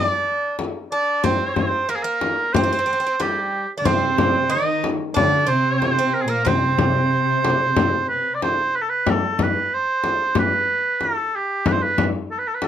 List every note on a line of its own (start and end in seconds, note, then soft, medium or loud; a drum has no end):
0.00 0.56 D4 medium
0.00 0.05 D#5 medium
0.05 0.59 D5 medium
0.59 frame drum medium
0.92 1.22 D4 medium
0.92 1.26 D5 medium
1.24 1.88 C4 medium
1.24 1.91 C5 medium
1.24 frame drum medium
1.56 frame drum medium
1.89 2.02 A#3 medium
1.89 1.97 A#4 medium
1.96 2.04 G#4 medium
2.03 2.52 A#3 medium
2.03 2.55 A#4 medium
2.21 frame drum medium
2.54 2.62 C4 medium
2.54 3.23 C5 loud
2.54 frame drum medium
2.64 2.71 C4 medium
2.73 2.78 C4 medium
2.79 2.85 C4 medium
2.86 2.91 C4 medium
2.93 2.99 C4 soft
3.00 3.05 C4 medium
3.07 3.15 C4 medium
3.20 3.66 G3 medium
3.20 3.70 G4 medium
3.20 frame drum medium
3.78 3.86 D3 medium
3.78 3.85 D4 medium
3.78 3.88 D5 medium
3.85 4.50 C3 medium
3.85 4.53 C4 medium
3.85 4.52 C5 medium
3.85 frame drum medium
4.18 frame drum medium
4.50 4.89 D#3 medium
4.50 4.86 D#4 medium
4.50 4.89 D#5 medium
4.84 frame drum medium
5.14 5.46 D3 medium
5.14 5.49 D4 medium
5.14 5.50 D5 loud
5.14 frame drum medium
5.47 6.28 C3 medium
5.47 5.97 C4 medium
5.47 6.16 C5 loud
5.82 frame drum medium
5.99 6.27 C4 medium
6.14 6.23 A#4 medium
6.21 6.32 G#4 medium
6.28 6.46 A#2 medium
6.28 6.44 A#3 medium
6.28 6.50 A#4 medium
6.45 8.42 C3 medium
6.45 8.37 C4 medium
6.45 8.08 C5 medium
6.45 frame drum medium
6.78 frame drum medium
7.45 frame drum medium
7.76 frame drum medium
8.09 8.36 B4 medium
8.35 8.44 D5 medium
8.42 8.77 C5 medium
8.42 frame drum medium
8.76 8.83 B4 medium
8.81 8.91 A4 medium
8.89 9.11 B4 medium
9.06 9.44 A4 medium
9.06 frame drum medium
9.39 9.76 B4 medium
9.39 frame drum medium
9.74 10.38 C5 medium
10.04 frame drum medium
10.35 frame drum medium
10.39 11.05 B4 loud
11.01 11.37 A4 medium
11.01 frame drum medium
11.36 11.69 G4 medium
11.66 11.74 B4 medium
11.66 frame drum medium
11.73 11.84 C5 medium
11.83 12.06 B4 medium
11.98 frame drum medium
12.31 12.40 A4 medium
12.39 12.49 B4 medium
12.47 12.56 A4 medium
12.54 12.65 B4 medium
12.62 12.68 A4 medium
12.62 frame drum medium